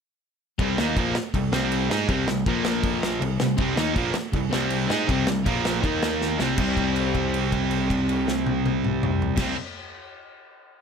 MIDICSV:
0, 0, Header, 1, 7, 480
1, 0, Start_track
1, 0, Key_signature, -3, "minor"
1, 0, Tempo, 375469
1, 759, Time_signature, 4, 2, 24, 8
1, 13825, End_track
2, 0, Start_track
2, 0, Title_t, "Overdriven electric guitar"
2, 0, Program_c, 0, 29
2, 746, Note_on_c, 0, 48, 87
2, 754, Note_on_c, 0, 55, 95
2, 762, Note_on_c, 0, 60, 96
2, 986, Note_off_c, 0, 48, 0
2, 990, Note_off_c, 0, 55, 0
2, 994, Note_off_c, 0, 60, 0
2, 999, Note_on_c, 0, 58, 111
2, 1000, Note_on_c, 0, 51, 97
2, 1015, Note_on_c, 0, 63, 113
2, 1215, Note_off_c, 0, 51, 0
2, 1220, Note_on_c, 0, 46, 84
2, 1228, Note_off_c, 0, 58, 0
2, 1234, Note_on_c, 0, 53, 102
2, 1240, Note_off_c, 0, 63, 0
2, 1247, Note_on_c, 0, 58, 113
2, 1463, Note_off_c, 0, 46, 0
2, 1470, Note_off_c, 0, 53, 0
2, 1477, Note_off_c, 0, 58, 0
2, 1715, Note_on_c, 0, 48, 72
2, 1727, Note_on_c, 0, 55, 76
2, 1910, Note_off_c, 0, 48, 0
2, 1916, Note_off_c, 0, 55, 0
2, 1942, Note_on_c, 0, 48, 92
2, 1948, Note_on_c, 0, 55, 92
2, 1965, Note_on_c, 0, 60, 92
2, 2413, Note_off_c, 0, 55, 0
2, 2419, Note_on_c, 0, 56, 89
2, 2424, Note_off_c, 0, 48, 0
2, 2430, Note_off_c, 0, 60, 0
2, 2435, Note_on_c, 0, 63, 105
2, 2445, Note_on_c, 0, 68, 96
2, 2662, Note_off_c, 0, 56, 0
2, 2664, Note_on_c, 0, 48, 98
2, 2670, Note_off_c, 0, 63, 0
2, 2673, Note_on_c, 0, 55, 101
2, 2675, Note_off_c, 0, 68, 0
2, 2683, Note_on_c, 0, 60, 98
2, 2884, Note_off_c, 0, 48, 0
2, 2894, Note_off_c, 0, 55, 0
2, 2899, Note_on_c, 0, 48, 62
2, 2909, Note_on_c, 0, 55, 73
2, 2914, Note_off_c, 0, 60, 0
2, 3101, Note_off_c, 0, 48, 0
2, 3106, Note_off_c, 0, 55, 0
2, 3147, Note_on_c, 0, 46, 108
2, 3162, Note_on_c, 0, 53, 106
2, 3164, Note_on_c, 0, 58, 109
2, 4102, Note_off_c, 0, 46, 0
2, 4107, Note_off_c, 0, 53, 0
2, 4107, Note_on_c, 0, 48, 61
2, 4112, Note_on_c, 0, 55, 68
2, 4113, Note_off_c, 0, 58, 0
2, 4304, Note_off_c, 0, 48, 0
2, 4306, Note_off_c, 0, 55, 0
2, 4351, Note_on_c, 0, 48, 64
2, 4359, Note_on_c, 0, 55, 71
2, 4545, Note_off_c, 0, 48, 0
2, 4550, Note_off_c, 0, 55, 0
2, 4565, Note_on_c, 0, 48, 98
2, 4583, Note_on_c, 0, 55, 105
2, 4588, Note_on_c, 0, 60, 112
2, 4812, Note_off_c, 0, 48, 0
2, 4817, Note_off_c, 0, 55, 0
2, 4817, Note_on_c, 0, 51, 92
2, 4822, Note_on_c, 0, 58, 104
2, 4824, Note_off_c, 0, 60, 0
2, 4838, Note_on_c, 0, 63, 104
2, 5058, Note_off_c, 0, 51, 0
2, 5061, Note_off_c, 0, 58, 0
2, 5069, Note_off_c, 0, 63, 0
2, 5077, Note_on_c, 0, 46, 91
2, 5082, Note_on_c, 0, 53, 114
2, 5095, Note_on_c, 0, 58, 111
2, 5304, Note_off_c, 0, 46, 0
2, 5310, Note_off_c, 0, 53, 0
2, 5317, Note_off_c, 0, 58, 0
2, 5540, Note_on_c, 0, 48, 74
2, 5548, Note_on_c, 0, 55, 79
2, 5738, Note_off_c, 0, 48, 0
2, 5742, Note_off_c, 0, 55, 0
2, 5780, Note_on_c, 0, 48, 89
2, 5792, Note_on_c, 0, 55, 97
2, 5803, Note_on_c, 0, 60, 94
2, 6258, Note_off_c, 0, 48, 0
2, 6258, Note_off_c, 0, 55, 0
2, 6264, Note_on_c, 0, 56, 88
2, 6269, Note_off_c, 0, 60, 0
2, 6278, Note_on_c, 0, 63, 98
2, 6280, Note_on_c, 0, 68, 111
2, 6496, Note_on_c, 0, 48, 102
2, 6499, Note_off_c, 0, 56, 0
2, 6506, Note_off_c, 0, 63, 0
2, 6508, Note_off_c, 0, 68, 0
2, 6509, Note_on_c, 0, 55, 98
2, 6511, Note_on_c, 0, 60, 104
2, 6732, Note_off_c, 0, 48, 0
2, 6742, Note_off_c, 0, 55, 0
2, 6743, Note_off_c, 0, 60, 0
2, 6748, Note_on_c, 0, 48, 65
2, 6755, Note_on_c, 0, 55, 77
2, 6940, Note_off_c, 0, 48, 0
2, 6944, Note_off_c, 0, 55, 0
2, 6986, Note_on_c, 0, 46, 107
2, 6993, Note_on_c, 0, 53, 104
2, 6997, Note_on_c, 0, 58, 112
2, 7450, Note_off_c, 0, 46, 0
2, 7456, Note_off_c, 0, 58, 0
2, 7456, Note_on_c, 0, 51, 102
2, 7463, Note_off_c, 0, 53, 0
2, 7469, Note_on_c, 0, 63, 109
2, 7471, Note_on_c, 0, 58, 99
2, 8173, Note_off_c, 0, 51, 0
2, 8179, Note_off_c, 0, 63, 0
2, 8181, Note_off_c, 0, 58, 0
2, 8188, Note_on_c, 0, 48, 93
2, 8195, Note_on_c, 0, 55, 108
2, 8196, Note_on_c, 0, 60, 99
2, 8385, Note_off_c, 0, 48, 0
2, 8401, Note_on_c, 0, 48, 94
2, 8416, Note_off_c, 0, 55, 0
2, 8424, Note_off_c, 0, 60, 0
2, 8431, Note_on_c, 0, 55, 102
2, 8451, Note_on_c, 0, 60, 107
2, 11972, Note_off_c, 0, 48, 0
2, 11977, Note_on_c, 0, 48, 92
2, 11997, Note_off_c, 0, 55, 0
2, 12002, Note_on_c, 0, 55, 99
2, 12027, Note_off_c, 0, 60, 0
2, 12032, Note_on_c, 0, 60, 102
2, 12197, Note_off_c, 0, 48, 0
2, 12209, Note_off_c, 0, 55, 0
2, 12224, Note_off_c, 0, 60, 0
2, 13825, End_track
3, 0, Start_track
3, 0, Title_t, "Picked electric bass"
3, 0, Program_c, 1, 34
3, 757, Note_on_c, 1, 36, 93
3, 982, Note_off_c, 1, 36, 0
3, 1017, Note_on_c, 1, 39, 98
3, 1226, Note_off_c, 1, 39, 0
3, 1234, Note_on_c, 1, 34, 91
3, 1460, Note_off_c, 1, 34, 0
3, 1715, Note_on_c, 1, 36, 77
3, 1941, Note_off_c, 1, 36, 0
3, 1947, Note_on_c, 1, 36, 99
3, 2400, Note_off_c, 1, 36, 0
3, 2434, Note_on_c, 1, 44, 78
3, 2660, Note_off_c, 1, 44, 0
3, 2669, Note_on_c, 1, 36, 90
3, 2897, Note_off_c, 1, 36, 0
3, 2907, Note_on_c, 1, 36, 87
3, 3136, Note_off_c, 1, 36, 0
3, 3150, Note_on_c, 1, 34, 94
3, 4062, Note_off_c, 1, 34, 0
3, 4103, Note_on_c, 1, 36, 86
3, 4333, Note_off_c, 1, 36, 0
3, 4346, Note_on_c, 1, 36, 79
3, 4574, Note_off_c, 1, 36, 0
3, 4583, Note_on_c, 1, 36, 89
3, 4812, Note_off_c, 1, 36, 0
3, 4831, Note_on_c, 1, 39, 97
3, 5056, Note_off_c, 1, 39, 0
3, 5061, Note_on_c, 1, 34, 95
3, 5290, Note_off_c, 1, 34, 0
3, 5539, Note_on_c, 1, 36, 92
3, 5768, Note_off_c, 1, 36, 0
3, 5785, Note_on_c, 1, 36, 102
3, 6233, Note_off_c, 1, 36, 0
3, 6276, Note_on_c, 1, 44, 88
3, 6496, Note_off_c, 1, 44, 0
3, 6508, Note_on_c, 1, 36, 98
3, 6732, Note_off_c, 1, 36, 0
3, 6748, Note_on_c, 1, 36, 81
3, 6971, Note_off_c, 1, 36, 0
3, 6987, Note_on_c, 1, 34, 89
3, 7433, Note_off_c, 1, 34, 0
3, 7463, Note_on_c, 1, 39, 101
3, 8133, Note_off_c, 1, 39, 0
3, 8184, Note_on_c, 1, 36, 77
3, 8408, Note_off_c, 1, 36, 0
3, 8415, Note_on_c, 1, 36, 96
3, 11869, Note_off_c, 1, 36, 0
3, 11987, Note_on_c, 1, 36, 72
3, 12187, Note_off_c, 1, 36, 0
3, 13825, End_track
4, 0, Start_track
4, 0, Title_t, "Muted distorted electric guitar strokes"
4, 1486, Note_on_c, 9, 29, 52
4, 1613, Note_off_c, 9, 29, 0
4, 5317, Note_on_c, 9, 29, 61
4, 5445, Note_off_c, 9, 29, 0
4, 13825, End_track
5, 0, Start_track
5, 0, Title_t, "Muted overdriven electric guitar strokes"
5, 1484, Note_on_c, 9, 29, 56
5, 1612, Note_off_c, 9, 29, 0
5, 5309, Note_on_c, 9, 29, 66
5, 5437, Note_off_c, 9, 29, 0
5, 13825, End_track
6, 0, Start_track
6, 0, Title_t, "Muted picked electric bass strokes"
6, 5304, Note_on_c, 9, 29, 43
6, 5432, Note_off_c, 9, 29, 0
6, 13825, End_track
7, 0, Start_track
7, 0, Title_t, "Drums"
7, 756, Note_on_c, 9, 36, 101
7, 756, Note_on_c, 9, 49, 62
7, 884, Note_off_c, 9, 36, 0
7, 884, Note_off_c, 9, 49, 0
7, 1001, Note_on_c, 9, 38, 110
7, 1128, Note_off_c, 9, 38, 0
7, 1236, Note_on_c, 9, 36, 98
7, 1241, Note_on_c, 9, 49, 62
7, 1364, Note_off_c, 9, 36, 0
7, 1368, Note_off_c, 9, 49, 0
7, 1470, Note_on_c, 9, 38, 111
7, 1598, Note_off_c, 9, 38, 0
7, 1712, Note_on_c, 9, 36, 87
7, 1715, Note_on_c, 9, 49, 64
7, 1840, Note_off_c, 9, 36, 0
7, 1843, Note_off_c, 9, 49, 0
7, 1954, Note_on_c, 9, 38, 115
7, 2082, Note_off_c, 9, 38, 0
7, 2194, Note_on_c, 9, 49, 64
7, 2321, Note_off_c, 9, 49, 0
7, 2446, Note_on_c, 9, 38, 124
7, 2574, Note_off_c, 9, 38, 0
7, 2669, Note_on_c, 9, 36, 102
7, 2672, Note_on_c, 9, 49, 63
7, 2797, Note_off_c, 9, 36, 0
7, 2799, Note_off_c, 9, 49, 0
7, 2912, Note_on_c, 9, 38, 113
7, 3040, Note_off_c, 9, 38, 0
7, 3149, Note_on_c, 9, 49, 58
7, 3150, Note_on_c, 9, 36, 105
7, 3277, Note_off_c, 9, 36, 0
7, 3277, Note_off_c, 9, 49, 0
7, 3384, Note_on_c, 9, 38, 126
7, 3512, Note_off_c, 9, 38, 0
7, 3623, Note_on_c, 9, 49, 52
7, 3625, Note_on_c, 9, 36, 101
7, 3751, Note_off_c, 9, 49, 0
7, 3753, Note_off_c, 9, 36, 0
7, 3876, Note_on_c, 9, 38, 116
7, 4004, Note_off_c, 9, 38, 0
7, 4115, Note_on_c, 9, 49, 60
7, 4243, Note_off_c, 9, 49, 0
7, 4344, Note_on_c, 9, 38, 120
7, 4472, Note_off_c, 9, 38, 0
7, 4574, Note_on_c, 9, 49, 57
7, 4584, Note_on_c, 9, 36, 110
7, 4701, Note_off_c, 9, 49, 0
7, 4712, Note_off_c, 9, 36, 0
7, 4825, Note_on_c, 9, 38, 106
7, 4953, Note_off_c, 9, 38, 0
7, 5061, Note_on_c, 9, 49, 57
7, 5063, Note_on_c, 9, 36, 99
7, 5189, Note_off_c, 9, 49, 0
7, 5191, Note_off_c, 9, 36, 0
7, 5291, Note_on_c, 9, 38, 120
7, 5419, Note_off_c, 9, 38, 0
7, 5538, Note_on_c, 9, 49, 62
7, 5542, Note_on_c, 9, 36, 89
7, 5666, Note_off_c, 9, 49, 0
7, 5670, Note_off_c, 9, 36, 0
7, 5788, Note_on_c, 9, 38, 113
7, 5916, Note_off_c, 9, 38, 0
7, 6013, Note_on_c, 9, 49, 63
7, 6141, Note_off_c, 9, 49, 0
7, 6266, Note_on_c, 9, 38, 108
7, 6394, Note_off_c, 9, 38, 0
7, 6507, Note_on_c, 9, 36, 111
7, 6512, Note_on_c, 9, 49, 61
7, 6635, Note_off_c, 9, 36, 0
7, 6640, Note_off_c, 9, 49, 0
7, 6737, Note_on_c, 9, 38, 117
7, 6864, Note_off_c, 9, 38, 0
7, 6983, Note_on_c, 9, 36, 109
7, 6986, Note_on_c, 9, 49, 69
7, 7111, Note_off_c, 9, 36, 0
7, 7113, Note_off_c, 9, 49, 0
7, 7226, Note_on_c, 9, 38, 110
7, 7353, Note_off_c, 9, 38, 0
7, 7463, Note_on_c, 9, 36, 103
7, 7468, Note_on_c, 9, 49, 55
7, 7591, Note_off_c, 9, 36, 0
7, 7596, Note_off_c, 9, 49, 0
7, 7705, Note_on_c, 9, 38, 120
7, 7833, Note_off_c, 9, 38, 0
7, 7946, Note_on_c, 9, 38, 68
7, 8074, Note_off_c, 9, 38, 0
7, 8173, Note_on_c, 9, 38, 96
7, 8301, Note_off_c, 9, 38, 0
7, 8408, Note_on_c, 9, 57, 94
7, 8412, Note_on_c, 9, 36, 104
7, 8536, Note_off_c, 9, 57, 0
7, 8539, Note_off_c, 9, 36, 0
7, 8653, Note_on_c, 9, 36, 65
7, 8657, Note_on_c, 9, 57, 42
7, 8781, Note_off_c, 9, 36, 0
7, 8785, Note_off_c, 9, 57, 0
7, 8895, Note_on_c, 9, 49, 50
7, 9023, Note_off_c, 9, 49, 0
7, 9135, Note_on_c, 9, 36, 65
7, 9138, Note_on_c, 9, 57, 43
7, 9263, Note_off_c, 9, 36, 0
7, 9266, Note_off_c, 9, 57, 0
7, 9382, Note_on_c, 9, 49, 49
7, 9509, Note_off_c, 9, 49, 0
7, 9617, Note_on_c, 9, 36, 65
7, 9617, Note_on_c, 9, 57, 54
7, 9744, Note_off_c, 9, 57, 0
7, 9745, Note_off_c, 9, 36, 0
7, 9854, Note_on_c, 9, 49, 51
7, 9982, Note_off_c, 9, 49, 0
7, 10102, Note_on_c, 9, 36, 65
7, 10109, Note_on_c, 9, 57, 55
7, 10230, Note_off_c, 9, 36, 0
7, 10237, Note_off_c, 9, 57, 0
7, 10342, Note_on_c, 9, 49, 55
7, 10470, Note_off_c, 9, 49, 0
7, 10587, Note_on_c, 9, 38, 88
7, 10715, Note_off_c, 9, 38, 0
7, 10821, Note_on_c, 9, 48, 84
7, 10949, Note_off_c, 9, 48, 0
7, 11067, Note_on_c, 9, 48, 97
7, 11195, Note_off_c, 9, 48, 0
7, 11306, Note_on_c, 9, 47, 91
7, 11434, Note_off_c, 9, 47, 0
7, 11546, Note_on_c, 9, 45, 95
7, 11673, Note_off_c, 9, 45, 0
7, 11789, Note_on_c, 9, 43, 104
7, 11916, Note_off_c, 9, 43, 0
7, 11982, Note_on_c, 9, 57, 102
7, 11988, Note_on_c, 9, 36, 111
7, 11988, Note_on_c, 9, 38, 103
7, 12110, Note_off_c, 9, 57, 0
7, 12115, Note_off_c, 9, 36, 0
7, 12116, Note_off_c, 9, 38, 0
7, 13825, End_track
0, 0, End_of_file